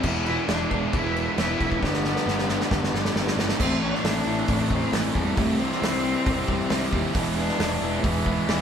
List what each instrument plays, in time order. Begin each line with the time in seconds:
0.03 picked electric bass E1, distorted electric guitar E2 B2 E3 G#3 B3 E4, kick, crash
0.26 distorted electric guitar E2 B2 E3 G#3 B3 E4, cello E4, crash
0.48 picked electric bass E1, distorted electric guitar E2 B2 E3 G#3 B3 E4, cello D4, snare, crash
0.70 picked electric bass E1, distorted electric guitar E2 B2 E3 G#3 B3 E4, kick, crash
0.93 picked electric bass E1, distorted electric guitar E2 B2 E3 G#3 B3 E4, cello E4, kick, crash
1.15 distorted electric guitar E2 B2 E3, crash
1.37 picked electric bass E1, distorted electric guitar E2 B2 E3 G#3 B3 E4, cello E4, snare, crash
1.59 picked electric bass B1, distorted electric guitar E2 B2 E3 G#3 B3 E4, kick, crash
1.72 kick
1.81 picked electric bass G1, distorted electric guitar G2 D3 G3 B3 D4, kick, snare
1.85 cello B3
1.94 snare
2.03 distorted electric guitar G2 D3 G3 B3 D4, snare
2.16 snare
2.25 picked electric bass G1, distorted electric guitar G2 D3 G3 B3 D4, snare
2.39 snare
2.47 distorted electric guitar G2 D3 G3 B3 D4, snare
2.60 snare
2.69 picked electric bass G1, distorted electric guitar G2 D3 G3 B3 D4, kick, snare
2.84 snare
2.92 picked electric bass G1, distorted electric guitar G2 D3 G3, snare
3.05 snare
3.14 picked electric bass G1, distorted electric guitar G2 D3 G3 B3 D4, snare
3.27 snare
3.36 picked electric bass G1, distorted electric guitar G2 D3 G3 B3 D4, snare
3.49 snare
3.58 picked electric bass A1, distorted electric guitar A2 E3 A3 C4 E4, cello C4, kick, crash
3.62 distorted electric guitar E3
3.80 distorted electric guitar A2 E3 A3 C4 E4, cello D4
3.95 snare
4.02 picked electric bass A1, distorted electric guitar A2 E3 A3 C4 E4, snare, open hi-hat
4.25 picked electric bass A1, distorted electric guitar A2 E3 A3 C4 E4
4.47 picked electric bass A1, distorted electric guitar A2 E3 A3 C4 E4, kick, open hi-hat
4.70 distorted electric guitar A2 E3 A3, cello C4, kick
4.91 picked electric bass A1, distorted electric guitar A2 E3 A3 C4 E4, cello A3, snare, open hi-hat
5.14 picked electric bass E2, distorted electric guitar A2 E3 A3 C4 E4, cello G3, kick
5.37 picked electric bass C2, distorted electric guitar C3 E3 G3 C4 E4, cello A3, kick, open hi-hat
5.59 distorted electric guitar C3 G3 C4 E4, cello C4
5.72 snare
5.80 picked electric bass C2, distorted electric guitar C3 E3 G3 C4 E4, snare, open hi-hat
6.02 distorted electric guitar C3 G3 C4 E4
6.25 picked electric bass C2, distorted electric guitar C3 E3 G3 C4 E4, kick, open hi-hat
6.46 picked electric bass C2, distorted electric guitar C3 G3 C4, kick
6.69 picked electric bass C2, distorted electric guitar C3 E3 G3 C4, snare, open hi-hat
6.73 distorted electric guitar E4
6.91 picked electric bass D#2, distorted electric guitar C3 G3 C4 E4, kick
7.14 picked electric bass E1, distorted electric guitar E2 B2 E3 G#3 B3 E4, kick, open hi-hat
7.35 distorted electric guitar E2 B2 E3 G#3 B3 E4, cello D4
7.49 snare
7.57 picked electric bass E1, distorted electric guitar E2 B2 E3 G#3 B3 E4, snare, open hi-hat
7.81 picked electric bass E1, distorted electric guitar E2 B2 E3 G#3 B3 E4
8.02 picked electric bass E1, distorted electric guitar E2 B2 E3 G#3 B3 E4, cello E3, kick, open hi-hat
8.25 distorted electric guitar E2 B2 E3, kick
8.47 picked electric bass E1, distorted electric guitar E2 B2 E3 G#3 B3 E4, snare, open hi-hat